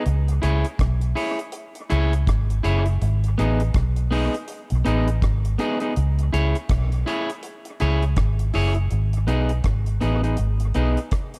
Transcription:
0.06 fingered electric bass C#2, closed hi-hat
0.28 closed hi-hat
0.42 fingered electric bass C#2, clean electric guitar E4 G#4 C#5, closed hi-hat
0.65 closed hi-hat
0.79 fingered electric bass B1, kick, cross-stick, closed hi-hat
1.01 closed hi-hat
1.15 clean electric guitar E4 G#4 C#5, open hi-hat
1.39 closed hi-hat
1.52 closed hi-hat
1.75 closed hi-hat
1.90 fingered electric bass C#2, clean electric guitar E4 G#4 C#5, closed hi-hat
2.13 closed hi-hat
2.27 fingered electric bass G#1, kick, cross-stick, closed hi-hat
2.50 closed hi-hat
2.63 fingered electric bass F#1, clean electric guitar E4 G#4 C#5, closed hi-hat
2.86 muted clean electric guitar stroke, closed hi-hat
3.02 fingered electric bass G#1, closed hi-hat
3.24 closed hi-hat
3.38 fingered electric bass A1, clean electric guitar B3 D#4 G#4, closed hi-hat
3.60 closed hi-hat
3.74 fingered electric bass B1, kick, cross-stick, closed hi-hat
3.96 closed hi-hat
4.11 clean electric guitar B3 D#4 G#4, open hi-hat
4.34 closed hi-hat
4.48 closed hi-hat
4.70 fingered electric bass B1, closed hi-hat
4.85 fingered electric bass A1, clean electric guitar B3 D#4 G#4, closed hi-hat
5.08 closed hi-hat
5.22 fingered electric bass G#1, kick, cross-stick, closed hi-hat
5.45 closed hi-hat
5.58 clean electric guitar B3 D#4 G#4, closed hi-hat
5.80 clean electric guitar B3 D#4 G#4, closed hi-hat
5.96 fingered electric bass C#2, closed hi-hat
6.19 closed hi-hat
6.33 fingered electric bass C#2, clean electric guitar E4 G#4 C#5, closed hi-hat
6.55 closed hi-hat
6.69 fingered electric bass B1, kick, cross-stick, closed hi-hat
6.92 closed hi-hat
7.06 clean electric guitar E4 G#4 C#5, closed hi-hat
7.30 closed hi-hat
7.43 closed hi-hat
7.65 closed hi-hat
7.80 fingered electric bass C#2, clean electric guitar E4 G#4 C#5, closed hi-hat
8.02 closed hi-hat
8.16 fingered electric bass G#1, kick, cross-stick, closed hi-hat
8.39 closed hi-hat
8.54 fingered electric bass F#1, clean electric guitar E4 G#4 C#5, open hi-hat
8.75 muted clean electric guitar stroke, closed hi-hat
8.91 fingered electric bass G#1, closed hi-hat
9.13 closed hi-hat
9.27 fingered electric bass B1, clean electric guitar B3 D#4 G#4, closed hi-hat
9.49 closed hi-hat
9.64 fingered electric bass G#1, kick, cross-stick, closed hi-hat
9.86 closed hi-hat
10.01 fingered electric bass A1, clean electric guitar B3 D#4 G#4, closed hi-hat
10.23 clean electric guitar B3 D#4 G#4, closed hi-hat
10.37 fingered electric bass G#1, closed hi-hat
10.60 closed hi-hat
10.74 fingered electric bass B1, clean electric guitar B3 D#4 G#4, closed hi-hat
10.97 closed hi-hat
11.11 kick, cross-stick, closed hi-hat
11.34 closed hi-hat

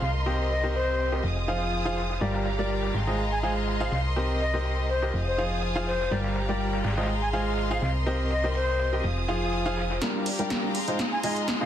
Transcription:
Already playing: string section D#5 A#5 C6, violin section C6
0.02 fm bass C2, string section C4, violin section A#4 D#5, flute F5, snare, closed hi-hat
0.15 closed hi-hat
0.26 grand piano C4 G4 A#4 C5 D#5, open hi-hat
0.50 flute D#5, closed hi-hat
0.57 string section G4
0.63 grand piano C4 G4 A#4 C5 D#5
0.75 flute C5, closed hi-hat
0.99 closed hi-hat
1.12 grand piano G4 A#4 C5 D#5, snare
1.24 fm bass F1, string section F4, violin section G#4 F5 D#6, closed hi-hat
1.37 closed hi-hat
1.48 grand piano F3 F4 G#4 C5 F5, closed hi-hat
1.60 string section C5
1.68 string section G#5
1.72 closed hi-hat
1.85 grand piano F3 F4 G#4 C5 F5
1.97 snare, closed hi-hat
2.10 snare, closed hi-hat
2.21 fm bass G1, grand piano G3 F4 G4 A#4 D5, violin section G4 A#5, string section G4, closed hi-hat
2.34 snare
2.44 string section G5, snare, closed hi-hat
2.53 string section D5 A#5
2.59 grand piano G3 F4 G4 A#4 D5
2.70 closed hi-hat
2.83 snare
2.94 fm bass G#1, violin section G#4 C6, string section G#4, snare, closed hi-hat
3.01 string section D#5
3.07 grand piano G#3 F4 G#4 C5 D#5, snare
3.19 closed hi-hat
3.32 flute G#5
3.39 string section C6
3.43 grand piano G#3 F4 G#4 C5 F5, flute G#5, closed hi-hat
3.56 closed hi-hat
3.67 closed hi-hat
3.80 grand piano F4 G#4 C5 F5, flute F5
3.92 fm bass C2, string section C4, violin section A#4 D#5, flute F5, snare, closed hi-hat
4.05 closed hi-hat
4.16 grand piano C4 G4 A#4 C5 D#5, open hi-hat
4.28 string section G4
4.41 flute D#5, closed hi-hat
4.54 grand piano C4 G4 A#4 C5 D#5
4.65 closed hi-hat
4.89 flute C5, closed hi-hat
5.02 grand piano G4 A#4 C5 D#5, snare
5.13 fm bass F1, string section F4, violin section G#4 F5 D#6, closed hi-hat
5.27 flute C5, closed hi-hat
5.38 grand piano F3 F4 G#4 C5 F5, closed hi-hat
5.48 string section C5, closed hi-hat
5.58 string section G#5
5.63 closed hi-hat
5.76 grand piano F3 F4 G#4 C5 F5
5.87 flute C5, snare, closed hi-hat
6.00 snare
6.11 fm bass G1, grand piano G3 F4 G4 A#4 D5, violin section G4 A#5, string section G4, closed hi-hat
6.24 snare
6.36 snare, closed hi-hat
6.45 grand piano G3 D5, string section D5 G5 A#5, closed hi-hat
6.49 grand piano F4 G4 A#4
6.60 closed hi-hat
6.73 snare
6.84 fm bass G#1, violin section G#4 F5 C6, string section G#4, snare, closed hi-hat
6.91 snare, closed hi-hat
6.97 grand piano G#3 F4 G#4 C5 D#5, snare, closed hi-hat
7.03 snare, closed hi-hat
7.09 closed hi-hat
7.22 flute G#5
7.29 string section D#5 C6
7.33 grand piano G#3 F4 G#4 C5 F5, flute G#5, closed hi-hat
7.46 closed hi-hat
7.58 closed hi-hat
7.71 grand piano F4 G#4 C5 F5, flute F5
7.82 fm bass C2, string section C4, violin section A#4 D#5 C6, flute F5, snare, closed hi-hat
7.95 closed hi-hat
8.06 grand piano C4 G4 A#4 C5 D#5, closed hi-hat, open hi-hat
8.19 closed hi-hat
8.31 string section G4, flute D#5, closed hi-hat
8.44 grand piano C4 G4 A#4 C5 D#5, closed hi-hat
8.55 flute C5, closed hi-hat
8.68 closed hi-hat
8.80 closed hi-hat
8.93 grand piano G4 A#4 C5 D#5, closed hi-hat
9.04 fm bass F1, string section F4, violin section G#4 F5 D#6, closed hi-hat
9.17 closed hi-hat
9.28 grand piano F3 F4 G#4 C5 F5, closed hi-hat
9.41 string section C5, closed hi-hat
9.48 string section G#5
9.53 closed hi-hat
9.66 grand piano F3 F4 G#4 C5 F5
9.77 snare, closed hi-hat
9.90 snare, closed hi-hat
10.01 grand piano G3 D4 F4 G4 A#4, string section G4, violin section G4 F5 A#5, kick, snare, closed hi-hat
10.18 string section D5
10.26 open hi-hat
10.35 string section G5 A#5
10.39 grand piano G3 D4 F4 G4 A#4, closed hi-hat
10.50 kick, snare, closed hi-hat
10.74 string section G#4, violin section G#4 C6, open hi-hat
10.88 grand piano G#3 D#4 F4 G#4 C5, closed hi-hat
10.99 kick, snare, closed hi-hat
11.12 flute G#5
11.19 string section D#5 C6
11.23 grand piano G#3 D#4 F4 G#4 D#5, flute G#5, open hi-hat
11.36 closed hi-hat
11.48 kick, snare, closed hi-hat
11.61 grand piano C3 D#4 F4 G#4 D#5, flute F5

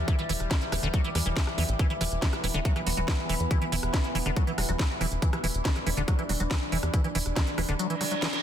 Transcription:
Already playing: synth drone E3 G3
0.08 acid bass E3, kick, closed hi-hat
0.19 acid bass E3, closed hi-hat
0.29 analog synth bass E1, acid bass E3, open hi-hat
0.40 analog synth bass E1, cross-stick, closed hi-hat
0.51 acid bass E3, kick, snare, closed hi-hat
0.62 closed hi-hat
0.72 analog synth bass E1, acid bass E3, cross-stick, open hi-hat
0.83 analog synth bass E1, acid bass D3, closed hi-hat
0.94 acid bass F#3, kick, closed hi-hat
1.04 acid bass E3, closed hi-hat
1.15 analog synth bass E2, acid bass E3, cross-stick, open hi-hat
1.26 analog synth bass E1, acid bass E3, closed hi-hat
1.36 acid bass E3, kick, snare, closed hi-hat
1.47 cross-stick
1.58 analog synth bass E2, acid bass E3, open hi-hat
1.69 analog synth bass A1, closed hi-hat
1.79 acid bass E3, synth drone B3, kick, closed hi-hat
1.90 acid bass E3, closed hi-hat
2.01 analog synth bass E1, acid bass E3, cross-stick, open hi-hat
2.12 analog synth bass E1, closed hi-hat
2.22 acid bass E3, kick, snare, closed hi-hat
2.33 cross-stick, closed hi-hat
2.44 analog synth bass E1, acid bass E3, open hi-hat
2.54 analog synth bass E1, acid bass D3, closed hi-hat
2.65 acid bass F#3, kick, closed hi-hat
2.76 acid bass E3, cross-stick, closed hi-hat
2.87 analog synth bass E1, acid bass F#3, open hi-hat
2.97 analog synth bass E1, acid bass F#3, closed hi-hat
3.08 acid bass E3, kick, cross-stick, snare, closed hi-hat
3.29 analog synth bass E1, acid bass E3, open hi-hat
3.40 analog synth bass E2, closed hi-hat
3.51 acid bass E3, kick, cross-stick, closed hi-hat
3.62 acid bass E3, closed hi-hat
3.72 analog synth bass E1, acid bass E3, open hi-hat
3.83 analog synth bass E1, cross-stick, closed hi-hat
3.94 acid bass E3, kick, snare, closed hi-hat
4.04 closed hi-hat
4.15 analog synth bass E1, acid bass E3, open hi-hat
4.26 analog synth bass E1, acid bass D3, cross-stick, closed hi-hat
4.36 acid bass F#3, kick, closed hi-hat
4.47 acid bass E3, closed hi-hat
4.58 analog synth bass E1, acid bass F#3, cross-stick, open hi-hat
4.69 analog synth bass E1, acid bass F#3, closed hi-hat
4.79 acid bass E3, kick, snare, closed hi-hat
5.01 analog synth bass E1, acid bass E3, cross-stick, open hi-hat
5.12 analog synth bass E1, closed hi-hat
5.22 acid bass E3, synth drone D4, kick, closed hi-hat
5.33 acid bass E3, cross-stick, closed hi-hat
5.44 analog synth bass E1, acid bass E3, open hi-hat
5.54 analog synth bass E1, closed hi-hat
5.65 acid bass E3, kick, snare, closed hi-hat
5.76 cross-stick, closed hi-hat
5.86 analog synth bass E1, acid bass E3, open hi-hat
5.97 analog synth bass E1, acid bass D3, closed hi-hat
6.08 acid bass F#3, kick, cross-stick, closed hi-hat
6.19 acid bass E3, closed hi-hat
6.29 analog synth bass E1, acid bass F#3, open hi-hat
6.40 analog synth bass E1, acid bass F#3, closed hi-hat
6.51 acid bass E3, kick, cross-stick, snare, closed hi-hat
6.72 analog synth bass E1, acid bass E3, open hi-hat
6.83 analog synth bass E2, cross-stick, closed hi-hat
6.94 acid bass E3, kick, closed hi-hat
7.04 acid bass E3, closed hi-hat
7.15 analog synth bass E1, acid bass E3, open hi-hat
7.26 analog synth bass E1, cross-stick, closed hi-hat
7.36 acid bass E3, kick, snare, closed hi-hat
7.47 closed hi-hat
7.58 analog synth bass E1, acid bass E3, cross-stick, open hi-hat
7.69 analog synth bass E1, acid bass D3, closed hi-hat
7.79 acid bass F#3, closed hi-hat, reverse cymbal
7.90 acid bass E3, closed hi-hat
8.01 acid bass F#3, cross-stick, open hi-hat
8.11 acid bass F#3, closed hi-hat
8.22 acid bass E3, snare, closed hi-hat
8.33 snare, closed hi-hat

